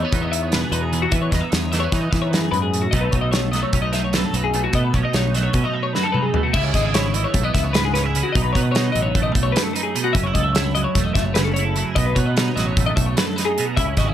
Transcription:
Already playing: E2 E3 D#4 G#4
0.02 B3 C#5
0.12 E2 D#4, kick, closed hi-hat
0.22 D#5
0.32 E5, closed hi-hat
0.42 C#5
0.52 B2 B4, snare, closed hi-hat
0.61 G#4
0.72 E2 D#4 B4, closed hi-hat
0.82 G#4
0.93 E2 B3, closed hi-hat
1.02 F#4
1.12 E2 E3 B3 E5, kick, closed hi-hat
1.22 C#5
1.31 E2 D#4 D#5, kick, snare, closed hi-hat
1.41 E5
1.51 E2 C#5, snare, closed hi-hat
1.72 E3 A3 D#5, snare, closed hi-hat
1.80 B3 C#5
1.92 E3 D#4, kick, snare, closed hi-hat
2.01 D#5
2.11 E3 E5, kick, snare, closed hi-hat
2.22 C#5
2.31 F#2 B4, snare, closed hi-hat
2.41 G#4
2.52 F#2 G#2 B4, closed hi-hat
2.62 G#4
2.74 A2, closed hi-hat
2.82 F#4
2.91 B1 B2 F#3 A3 D#5, kick, closed hi-hat
2.95 D#4 A4
3.01 B4
3.11 B1 D#4 C#5, kick, closed hi-hat
3.21 D#5
3.32 C#5, snare, closed hi-hat
3.52 F#3 A3 D#5, snare, closed hi-hat
3.63 C#5
3.73 B1 C#4, kick, closed hi-hat
3.82 D#4 D#5
3.93 E5, snare, closed hi-hat
4.04 C#5
4.13 F#2 A4 B4, snare, closed hi-hat
4.25 A4
4.34 B1 D#4 B4, closed hi-hat
4.44 G#4
4.54 B2 A3, closed hi-hat
4.64 F#4
4.73 B2 A3 D#5, kick, closed hi-hat
4.84 B4
4.94 B1 C#4 C#5, kick, closed hi-hat
5.03 D#4 D#5
5.13 B1 C#5, snare, closed hi-hat
5.34 F#3 A3 D#5, snare, closed hi-hat
5.43 C#5
5.53 B2 C#4, kick, closed hi-hat
5.64 D#4 D#5
5.74 E5
5.83 C#5
5.93 F#2 F#4 B4, snare
6.03 A4
6.12 B4, mid tom
6.17 D#4
6.22 G#4
6.34 B2 A3, floor tom
6.43 F#4
6.53 C#2 C#3 E4 E5, kick, crash
6.64 C#5
6.74 G#1 G#4 D#5, kick, snare, closed hi-hat
6.85 E5
6.94 E4 C#5, snare, closed hi-hat
7.14 E3 D#5, closed hi-hat
7.24 C#5
7.34 B1 A3, kick, closed hi-hat
7.43 B3 D#5
7.54 C#2 E5, kick, snare, closed hi-hat
7.64 C#5
7.73 G#2 B4, snare, closed hi-hat
7.85 G#4
7.94 C#4 B4, snare, closed hi-hat
8.04 E4 G#4
8.15 C#3 E4, closed hi-hat
8.23 F#4
8.32 B1 B2 D#4 D#5, kick, closed hi-hat
8.42 B4
8.53 B2 B4 C#5, kick, closed hi-hat
8.62 D#5
8.72 C#5, closed hi-hat
8.76 D#4, snare
8.92 A1 F#3 D#5, closed hi-hat
9.02 C#5
9.15 A1 A3, kick, closed hi-hat
9.23 D#5
9.32 B1 E5, kick, closed hi-hat
9.43 C#5
9.52 F#2 B4, closed hi-hat
9.57 snare
9.63 A4
9.73 D#4 B4, closed hi-hat
9.83 G#4
9.95 B2 D#4, closed hi-hat
10.04 F#4
10.13 F#1 F#2 C#4 E5, kick, closed hi-hat
10.24 E4 C#5
10.34 C#2 A4 D#5, kick, closed hi-hat
10.43 E5
10.53 E4 C#5, snare, closed hi-hat
10.75 F#3 D#5, closed hi-hat
10.84 C#5
10.95 E1 A3, kick, snare, closed hi-hat
11.04 D#5
11.14 F#1 E5, kick, snare, closed hi-hat
11.24 C#5
11.34 C#3 B4, snare, closed hi-hat
11.44 A4
11.54 C#5, closed hi-hat
11.58 E4
11.65 A4
11.76 F#2 E4, closed hi-hat
11.86 G#4
11.95 B1 B2 D#4 D#5, kick, closed hi-hat
12.06 B4
12.15 B2 B4 C#5, kick, closed hi-hat
12.26 D#5
12.36 D#4 C#5, snare, closed hi-hat
12.56 A1 F#3 D#5, snare, closed hi-hat
12.66 C#5
12.77 A1 A3, kick, closed hi-hat
12.86 D#5
12.96 B1 E5, kick, closed hi-hat
13.06 C#5
13.17 F#2 B4, snare, closed hi-hat
13.26 A4
13.36 D#4 B4, snare, closed hi-hat
13.45 G#4
13.58 B2 D#4, closed hi-hat
13.66 F#4
13.77 C#2 C#3 E4 E5, kick, closed hi-hat
13.87 C#5
13.97 G#1 F#4 D#5, kick, snare, closed hi-hat
14.08 G#4 E5

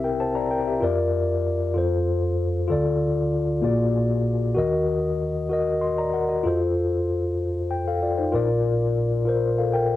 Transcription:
Already playing: C2 C3 C4 E4 G4 A#4 E5
0.04 A#4 G5
0.20 C5 A5
0.35 D5 A#5
0.51 A#4 G5
0.67 G4 E5
0.80 F2 F4 A#4 D5
1.74 F2 F4 A4 C5
2.68 D2 D3 F4 A4
2.72 D5
3.62 A#1 A#2 A#3 F4 F#4 G#4 D5
4.55 D#2 D#3 F#4 A#4 D#5
5.49 F#4 A#4 D#5
5.81 D#5 C6
5.98 D5 A#5
6.13 A#4 F#5
6.29 F#4 D#5
6.43 F2 F4 A4 C5
7.71 G5
7.88 A4 F5
8.03 F4 D5
8.18 D#4 C5
8.32 A#1 A#2 F4 A#4 D5
9.25 F4 A#4 C5
9.59 A4 F5
9.74 A#4 G5

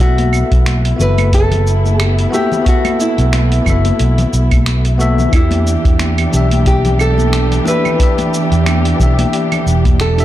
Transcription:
Already playing: B3 F#4
0.00 B1 A3 B3 E4 F#4 A4 E5, cabasa
0.18 closed hi-hat, high conga, cabasa
0.33 cabasa, claves
0.51 B1, kick, closed hi-hat, cabasa
0.66 finger snap, closed hi-hat, high conga, cabasa
0.85 closed hi-hat, cabasa
0.96 F#1 B3 F#4, low conga
1.00 A4 B4 E5, cabasa
1.18 closed hi-hat, high conga, cabasa, claves
1.33 A4, kick, closed hi-hat, cabasa
1.51 closed hi-hat, low conga, cabasa
1.67 cabasa
1.85 high conga, cabasa
2.00 G4, finger snap, closed hi-hat, cabasa, claves
2.19 closed hi-hat, cabasa
2.31 B3 F#4 G4 A4 E5, high conga, cabasa
2.52 low conga, cabasa
2.62 B3 F#4, kick
2.66 F#4 A4 E5, closed hi-hat, cabasa
2.85 closed hi-hat, high conga, cabasa, claves
3.00 E4, cabasa
3.18 B1, closed hi-hat, cabasa
3.33 finger snap, closed hi-hat, high conga, cabasa
3.52 closed hi-hat, cabasa
3.62 F#1 B3 F#4, kick, low conga, claves
3.67 A4 E5, cabasa
3.85 closed hi-hat, high conga, cabasa
3.99 B1, closed hi-hat, cabasa
4.18 closed hi-hat, low conga, cabasa
4.33 B1, cabasa
4.51 kick, closed hi-hat, high conga, cabasa, claves
4.66 finger snap, closed hi-hat, cabasa
4.85 closed hi-hat, cabasa
4.98 B3 F#4 A4 E5, high conga, cabasa
5.18 low conga, cabasa
5.29 E2 E3 B3 D4, kick, closed hi-hat, claves
5.33 E3 D4 E4 G4 E5, cabasa
5.51 closed hi-hat, high conga, cabasa
5.67 cabasa
5.85 E2, kick, closed hi-hat, cabasa
5.99 finger snap, closed hi-hat, high conga, cabasa
6.18 closed hi-hat, cabasa, claves
6.29 B1 E3 D4, low conga, cabasa
6.34 G4 E5
6.51 closed hi-hat, high conga, cabasa
6.66 G4, kick, closed hi-hat, cabasa
6.85 closed hi-hat, low conga, cabasa
6.99 A4, cabasa, claves
7.18 high conga, cabasa
7.33 finger snap, closed hi-hat, cabasa
7.52 closed hi-hat, cabasa
7.64 E3 D4 G4 B4 E5, high conga, cabasa
7.85 low conga, cabasa, claves
7.96 E3 D4, kick
8.00 G4 E5, closed hi-hat, cabasa
8.18 closed hi-hat, high conga, cabasa
8.34 cabasa
8.51 E2, closed hi-hat, cabasa
8.66 finger snap, closed hi-hat, high conga, cabasa, claves
8.85 closed hi-hat, cabasa
8.96 B1 E3 D4, kick, low conga
9.01 G4 E5, cabasa
9.19 closed hi-hat, high conga, cabasa
9.33 closed hi-hat, cabasa
9.52 closed hi-hat, low conga, cabasa, claves
9.66 E1, cabasa
9.85 kick, closed hi-hat, high conga, cabasa
10.00 A4, finger snap, closed hi-hat, cabasa
10.17 E3 D4 G4 E5, closed hi-hat, cabasa

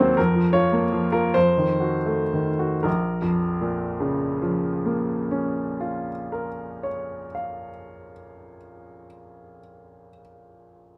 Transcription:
Already playing: D#2 F#3 A#3 C5 C#5
0.00 C4
0.17 F2 A#4
0.35 F3
0.53 F4 C#5
0.72 A#3
0.92 F3
1.12 F4 A#4
1.34 F2 C5
1.57 D#3
1.80 F#4
2.06 A3
2.33 D#3
2.59 F#4
2.83 A#1 A#4
3.22 F2
3.61 A#2
4.00 C#3
4.42 F3
4.85 A#3
5.31 C#4
5.81 F4
6.32 A#4
6.83 C#5
7.35 F5

